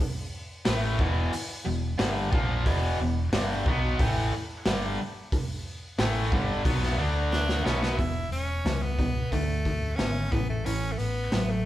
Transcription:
0.65 fingered electric bass A1, overdriven electric guitar A2 E3 A3, snare, open hi-hat
0.99 fingered electric bass E1, overdriven electric guitar E2 B2 E3, kick
1.33 muted overdriven electric guitar stroke, open hi-hat
1.65 fingered electric bass E1, overdriven electric guitar E2 B2
1.98 fingered electric bass G1, overdriven electric guitar G2 D3 G3, snare, open hi-hat
2.32 fingered electric bass A#1, overdriven electric guitar A#2 F3 A#3, kick
2.65 fingered electric bass E1, overdriven electric guitar E2 B2 E3, kick, open hi-hat
3.00 fingered electric bass E1, overdriven electric guitar E2 B2
3.32 fingered electric bass G1, overdriven electric guitar G2 D3 G3, snare, open hi-hat
3.66 fingered electric bass B1, overdriven electric guitar B2 F#3 B3, kick
3.99 fingered electric bass A1, overdriven electric guitar A2 E3 A3, kick, open hi-hat
4.33 muted fingered electric bass stroke, muted overdriven electric guitar stroke
4.65 fingered electric bass G1, overdriven electric guitar G2 D3 G3, snare, open hi-hat
5.32 kick, open hi-hat
5.98 fingered electric bass A1, overdriven electric guitar A2 E3 A3, snare, open hi-hat
6.32 fingered electric bass G1, overdriven electric guitar G2 D3 G3, kick
6.64 fingered electric bass B1, overdriven electric guitar B2 F#3 B3, kick, open hi-hat
6.83 snare
6.98 fingered electric bass D2, overdriven electric guitar D3 A3 D4
7.32 tenor saxophone D4, snare
7.49 snare
7.64 fingered electric bass B1, overdriven electric guitar B2 F#3 B3, tenor saxophone C#4, snare
7.83 tenor saxophone B3, snare
7.98 fingered electric bass E1, overdriven electric guitar E2 B2, tenor saxophone E4, kick, open hi-hat
8.31 fingered electric bass E1, tenor saxophone C#4, open hi-hat
8.65 fingered electric bass C#2, overdriven electric guitar E2 C#3, snare, open hi-hat
8.83 tenor saxophone B3
8.99 overdriven electric guitar E2 B2, kick, open hi-hat
9.32 fingered electric bass D2, overdriven electric guitar D3 A3, tenor saxophone A3, kick, open hi-hat
9.65 fingered electric bass D2, kick, open hi-hat
9.96 fingered electric bass G#1, overdriven electric guitar D3, tenor saxophone C#4, snare, open hi-hat
10.00 overdriven electric guitar B3
10.32 fingered electric bass A1, overdriven electric guitar A2 E3, tenor saxophone B3, kick, open hi-hat
10.49 tenor saxophone A3
10.66 fingered electric bass A1, overdriven electric guitar A2 E3, tenor saxophone C#4, open hi-hat
10.92 tenor saxophone A3
10.98 fingered electric bass A1, tenor saxophone B3, open hi-hat
11.32 fingered electric bass A1, overdriven electric guitar A2 F#3, snare, open hi-hat
11.50 tenor saxophone A3

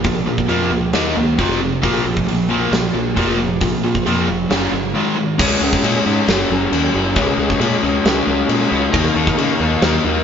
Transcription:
0.04 fingered electric bass A#1, overdriven electric guitar A#2 F3, kick, open hi-hat
0.26 overdriven electric guitar A#2 F3, fingered electric bass A#2
0.38 kick
0.48 fingered electric bass F2, overdriven electric guitar A#2 F3 A#3, open hi-hat
0.71 fingered electric bass C#2, overdriven electric guitar A#2 F3
0.93 fingered electric bass D#2, overdriven electric guitar D#3 A#3 D#4, snare, open hi-hat
1.15 fingered electric bass C#2, overdriven electric guitar D#3 A#3
1.37 fingered electric bass F1, overdriven electric guitar F2 C3 F3, kick, open hi-hat
1.51 snare
1.61 overdriven electric guitar F2 C3
1.82 fingered electric bass A#1, overdriven electric guitar A#2 F3 A#3, kick, open hi-hat
2.04 fingered electric bass A#1, overdriven electric guitar A#2 F3
2.17 kick
2.27 fingered electric bass A#1, overdriven electric guitar A#2 F3, open hi-hat
2.49 overdriven electric guitar A#2 F3 A#3
2.72 fingered electric bass A#1, overdriven electric guitar A#2 F3, snare, open hi-hat
2.94 fingered electric bass A#1, overdriven electric guitar A#2 F3
3.15 fingered electric bass F1, overdriven electric guitar A#2 F3 A#3, kick, open hi-hat
3.29 snare
3.39 overdriven electric guitar A#2 F3
3.61 fingered electric bass A#1, overdriven electric guitar A#2 F3, kick, open hi-hat
3.84 overdriven electric guitar A#2 F3, fingered electric bass A#2
3.95 kick
4.06 fingered electric bass F2, overdriven electric guitar A#2 F3 A#3, open hi-hat
4.28 fingered electric bass F1, overdriven electric guitar A#2 F3
4.50 fingered electric bass F#1, overdriven electric guitar F#2 C#3 F#3, snare, open hi-hat
4.71 fingered electric bass G1, overdriven electric guitar F#2 C#3
4.94 overdriven electric guitar G#2 D#3 G#3
5.17 overdriven electric guitar G#2 D#3
5.38 fingered electric bass C#2, overdriven electric guitar C#3 G#3 C#4, tonewheel organ C#4 G#4 D#5, kick, crash
5.61 fingered electric bass C#2, overdriven electric guitar C#3 G#3 C#4
5.73 kick, snare
5.84 fingered electric bass A#2, overdriven electric guitar C#3 G#3 C#4, crash
6.05 fingered electric bass G#2, overdriven electric guitar C#3 G#3 C#4
6.27 fingered electric bass F#1, overdriven electric guitar F#2 C#3 F#3, tonewheel organ F#3, snare, crash
6.50 fingered electric bass F#1, overdriven electric guitar F#2 C#3 F#3
6.72 fingered electric bass D#2, overdriven electric guitar F#2 C#3 F#3, crash
6.93 fingered electric bass F#1, overdriven electric guitar F#2 C#3 F#3
7.15 fingered electric bass C#2, overdriven electric guitar C#3 G#3 C#4, tonewheel organ D#5, kick, crash
7.38 fingered electric bass C#2, overdriven electric guitar C#3 G#3 C#4
7.50 kick, snare
7.60 fingered electric bass A#2, overdriven electric guitar C#3 G#3 C#4, crash
7.82 fingered electric bass C#2, overdriven electric guitar C#3 G#3 C#4
8.04 fingered electric bass C#2, overdriven electric guitar C#3 G#3 C#4, snare, crash
8.26 fingered electric bass C#2, overdriven electric guitar C#3 G#3 C#4
8.48 fingered electric bass A#2, overdriven electric guitar C#3 G#3 C#4, crash
8.70 fingered electric bass C#2, overdriven electric guitar C#3 G#3 C#4
8.92 fingered electric bass D#2, overdriven electric guitar D#3 A#3 D#4, tonewheel organ D#4 A#4 F5, kick, crash
9.15 fingered electric bass D#2, overdriven electric guitar D#3 A#3 D#4
9.27 kick, snare
9.38 fingered electric bass C#3, overdriven electric guitar D#3 A#3 D#4, crash
9.60 fingered electric bass D#2, overdriven electric guitar D#3 A#3 D#4
9.82 fingered electric bass D#2, overdriven electric guitar D#3 A#3 D#4, snare, crash
10.04 fingered electric bass D#2, overdriven electric guitar D#3 A#3 D#4

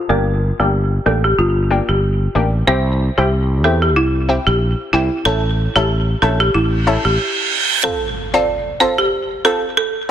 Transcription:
0.09 fretless electric bass G1, synth pluck A#3 D4 G4, marimba A#4
0.59 fretless electric bass G1, synth pluck A#3 D4 G4, marimba G4
1.06 fretless electric bass A1, synth pluck A#3 D4 G4, marimba A4
1.24 marimba G4
1.38 fretless electric bass G1, marimba F4
1.71 synth pluck A#3 D4 G4
1.89 fretless electric bass G1, marimba G4
2.35 fretless electric bass A1, synth pluck A#3 D4 G4
2.67 fretless electric bass C2, synth pluck C4 E4 G4, marimba C5
3.18 fretless electric bass C2, synth pluck C4 E4 G4, marimba G4
3.64 fretless electric bass E2, synth pluck C4 E4 G4, marimba A4
3.82 marimba G4
3.96 fretless electric bass C2, marimba E4
4.29 synth pluck C4 E4 G4
4.47 fretless electric bass A#1, marimba G4
4.93 fretless electric bass C2, synth pluck C4 E4 G4, marimba E4
5.25 fretless electric bass A1, synth pluck C#4 E4 A4, marimba A4
5.76 fretless electric bass A1, synth pluck C#4 E4 A4, marimba G4
6.22 fretless electric bass A#1, synth pluck C#4 E4 A4, marimba A4
6.40 marimba G4
6.54 fretless electric bass A1, marimba E4, reverse cymbal
6.87 synth pluck C#4 E4 A4
7.05 fretless electric bass A1, marimba G4
7.83 synth pluck C4 F4 A4, marimba A4, impact
8.34 synth pluck C4 F4 A4, marimba D5
8.80 synth pluck C4 F4 A4, marimba C5
8.98 marimba G4
9.45 synth pluck C4 F4 A4, marimba A4
9.77 marimba A4

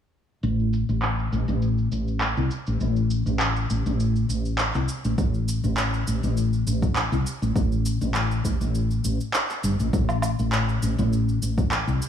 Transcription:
0.43 fretless electric bass A1, cabasa
0.59 cabasa
0.73 cabasa
0.89 fretless electric bass A1, cabasa
1.02 clap, cabasa
1.19 cabasa
1.32 fretless electric bass A1, cabasa
1.48 fretless electric bass A1, cabasa
1.62 cabasa
1.78 cabasa
1.92 fretless electric bass A1, cabasa
2.08 cabasa
2.21 clap, cabasa
2.37 fretless electric bass C2, cabasa
2.51 cabasa
2.67 fretless electric bass A1, cabasa
2.80 fretless electric bass A1, cabasa
2.96 cabasa
3.10 cabasa
3.26 fretless electric bass A1, cabasa
3.40 clap, cabasa
3.56 cabasa
3.70 fretless electric bass A1, cabasa
3.86 fretless electric bass A1, cabasa
4.00 cabasa
4.16 cabasa
4.29 fretless electric bass A1, cabasa
4.45 cabasa
4.58 clap, cabasa
4.74 fretless electric bass C2, clap, cabasa
4.88 cabasa
5.04 fretless electric bass A1, cabasa
5.18 fretless electric bass A1, kick, cabasa
5.34 cabasa
5.48 cabasa
5.64 fretless electric bass A1, cabasa
5.77 clap, cabasa
5.94 cabasa
6.07 fretless electric bass A1, cabasa
6.23 fretless electric bass A1, cabasa
6.37 cabasa
6.53 cabasa
6.67 fretless electric bass A1, cabasa
6.82 kick, cabasa
6.96 clap, cabasa
7.12 fretless electric bass C2, cabasa
7.26 cabasa
7.42 fretless electric bass A1, cabasa
7.56 fretless electric bass A1, kick, cabasa
7.72 cabasa
7.86 cabasa
8.01 fretless electric bass A1, cabasa
8.14 clap, cabasa
8.31 cabasa
8.45 fretless electric bass A1, kick, cabasa
8.61 fretless electric bass A1, cabasa
8.75 cabasa
8.91 cabasa
9.04 fretless electric bass A1, cabasa
9.21 cabasa
9.34 clap, cabasa
9.49 clap, cabasa
9.63 fretless electric bass G1, cabasa
9.80 fretless electric bass A1, cabasa
9.93 fretless electric bass A1, kick, cabasa
10.09 cabasa, low woodblock
10.22 cabasa, low woodblock
10.39 fretless electric bass A1, cabasa
10.52 clap, cabasa
10.69 cabasa
10.82 fretless electric bass A1, cabasa
10.98 fretless electric bass A1, cabasa
11.13 cabasa
11.29 cabasa
11.42 fretless electric bass A1, cabasa
11.58 kick, cabasa
11.71 clap, cabasa
11.87 fretless electric bass C2, cabasa
12.02 cabasa

